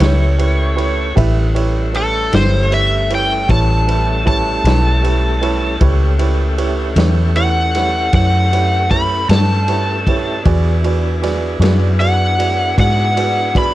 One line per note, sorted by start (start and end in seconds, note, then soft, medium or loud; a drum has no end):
0.00 1.13 C#2 medium
0.00 1.13 A3 medium
0.00 1.13 C#4 medium
0.00 0.28 E4 medium
0.00 1.13 E4 medium
0.00 0.29 G4 medium
0.00 1.14 G4 medium
0.00 0.28 B4 medium
0.00 0.29 C#5 medium
0.00 1.14 C#5 loud
0.00 snare loud
0.00 ride medium
0.38 0.68 E4 medium
0.38 0.68 G4 medium
0.38 0.68 B4 medium
0.38 0.68 C#5 medium
0.38 ride medium
0.76 1.06 E4 medium
0.76 1.06 G4 medium
0.76 1.06 B4 medium
0.76 1.07 C#5 medium
0.76 ride medium
1.14 2.29 A1 medium
1.14 5.77 G3 medium
1.14 5.76 A3 medium
1.14 5.77 C#4 medium
1.14 5.77 E4 medium
1.14 1.45 E4 medium
1.14 1.45 G4 medium
1.14 1.45 B4 medium
1.14 1.46 E5 medium
1.14 kick loud
1.14 ride medium
1.54 1.84 E4 medium
1.54 1.84 G4 medium
1.54 1.84 B4 medium
1.54 1.84 C#5 medium
1.54 ride medium
1.93 2.23 E4 medium
1.93 2.23 G4 soft
1.93 2.33 A4 medium
1.93 2.23 B4 soft
1.93 2.23 C#5 medium
1.93 ride medium
2.32 3.46 G1 medium
2.32 2.61 E4 medium
2.32 2.62 G4 soft
2.32 2.62 B4 soft
2.32 2.71 C5 medium
2.32 2.62 E5 medium
2.32 snare loud
2.32 ride medium
2.70 3.00 E4 medium
2.70 3.00 G4 soft
2.70 3.00 B4 soft
2.70 3.01 C#5 medium
2.70 3.10 E5 medium
2.70 ride medium
3.10 3.39 E4 medium
3.10 3.39 G4 medium
3.10 3.39 B4 soft
3.10 3.40 C#5 medium
3.10 ride medium
3.15 3.50 G5 medium
3.48 4.62 A1 medium
3.48 3.78 E4 medium
3.48 3.78 G4 soft
3.48 3.78 B4 medium
3.48 3.78 C#5 medium
3.48 4.25 A5 medium
3.48 kick medium
3.48 ride medium
3.87 4.17 E4 medium
3.87 4.16 G4 medium
3.87 4.17 B4 medium
3.87 4.17 E5 medium
3.87 ride medium
4.25 4.55 E4 medium
4.25 4.55 G4 medium
4.25 4.55 B4 medium
4.25 4.55 C#5 medium
4.25 5.78 A5 loud
4.25 kick medium
4.25 ride medium
4.64 5.77 B1 medium
4.64 4.94 E4 medium
4.64 4.95 G4 medium
4.64 4.95 B4 medium
4.64 4.95 C#5 medium
4.64 snare loud
4.64 ride medium
5.03 5.33 E4 medium
5.03 5.32 G4 soft
5.03 5.33 B4 soft
5.03 5.33 C#5 medium
5.03 ride medium
5.42 5.71 E4 medium
5.42 5.71 G4 medium
5.42 5.71 B4 medium
5.42 5.72 C#5 medium
5.42 ride medium
5.78 6.94 C#2 medium
5.78 10.40 A3 medium
5.78 10.41 C#4 medium
5.78 10.40 E4 medium
5.78 6.10 E4 medium
5.78 10.40 G4 medium
5.78 6.10 B4 medium
5.78 6.10 C#5 medium
5.78 kick loud
5.78 ride medium
5.82 6.11 G4 medium
6.19 6.48 E4 medium
6.19 6.49 G4 medium
6.19 6.49 B4 medium
6.19 6.49 C#5 medium
6.19 ride medium
6.58 6.87 E4 medium
6.58 6.87 G4 medium
6.58 6.87 B4 medium
6.58 6.87 C#5 medium
6.58 ride medium
6.96 8.09 E2 medium
6.96 7.26 E4 medium
6.96 7.26 G4 medium
6.96 7.26 B4 medium
6.96 7.26 C#5 medium
6.96 snare loud
6.96 ride medium
7.35 7.65 E4 medium
7.35 7.65 G4 soft
7.35 7.65 B4 soft
7.35 7.65 C#5 medium
7.35 8.12 F#5 loud
7.35 ride medium
7.75 8.04 E4 medium
7.75 8.04 G4 medium
7.75 8.04 B4 soft
7.75 8.04 C#5 medium
7.75 snare soft
7.75 ride medium
8.13 9.26 F#2 medium
8.13 8.42 E4 medium
8.13 8.42 G4 medium
8.13 8.43 B4 soft
8.13 8.43 C#5 medium
8.13 8.89 F#5 medium
8.13 kick medium
8.13 ride medium
8.52 8.81 E4 medium
8.52 8.81 G4 medium
8.52 8.82 B4 medium
8.52 8.82 C#5 medium
8.52 ride medium
8.91 9.20 E4 medium
8.91 9.20 G4 medium
8.91 9.20 B4 medium
8.91 9.20 C#5 medium
8.91 9.28 B5 medium
8.91 kick medium
8.91 ride medium
9.29 10.42 G2 medium
9.29 9.59 E4 medium
9.29 9.59 G4 medium
9.29 9.59 B4 medium
9.29 9.59 C#5 medium
9.29 10.42 A5 medium
9.29 snare loud
9.29 ride medium
9.68 9.97 E4 medium
9.68 9.97 G4 soft
9.68 9.98 B4 soft
9.68 9.98 C#5 medium
9.68 ride medium
10.07 10.36 E4 medium
10.07 10.36 G4 soft
10.07 10.36 B4 soft
10.07 10.37 C#5 medium
10.07 kick medium
10.07 ride medium
10.43 11.58 E2 medium
10.43 13.74 B3 medium
10.43 13.74 D4 medium
10.43 13.74 E4 medium
10.43 10.75 F#4 medium
10.43 13.74 G#4 medium
10.43 10.75 G#4 medium
10.43 10.75 B4 medium
10.43 10.75 D5 medium
10.43 kick loud
10.43 ride medium
10.84 11.13 F#4 medium
10.84 11.14 G#4 medium
10.84 11.13 B4 medium
10.84 11.14 D5 medium
10.84 ride medium
11.22 11.51 F#4 medium
11.22 11.52 G#4 medium
11.22 11.52 B4 medium
11.22 11.52 D5 medium
11.22 snare soft
11.22 ride medium
11.60 12.73 F#2 medium
11.60 11.90 F#4 medium
11.60 11.90 G#4 medium
11.60 11.90 B4 medium
11.60 11.90 D5 medium
11.60 ride medium
11.64 snare loud
12.00 12.29 F#4 medium
12.00 12.29 G#4 soft
12.00 12.29 B4 soft
12.00 12.29 D5 medium
12.00 12.75 F#5 medium
12.00 ride medium
12.38 12.67 F#4 medium
12.38 12.67 G#4 soft
12.38 12.68 B4 soft
12.38 12.68 D5 medium
12.38 ride medium
12.77 13.74 G#2 medium
12.77 13.06 F#4 medium
12.77 13.06 G#4 medium
12.77 13.07 B4 soft
12.77 13.07 D5 medium
12.77 13.54 F#5 medium
12.77 kick medium
12.77 ride medium
13.16 13.45 F#4 medium
13.16 13.45 G#4 soft
13.16 13.46 B4 soft
13.16 13.45 D5 medium
13.16 ride medium
13.55 13.74 F#4 medium
13.55 13.74 G#4 medium
13.55 13.74 B4 medium
13.55 13.74 D5 medium
13.55 13.74 B5 medium
13.55 kick medium
13.55 ride medium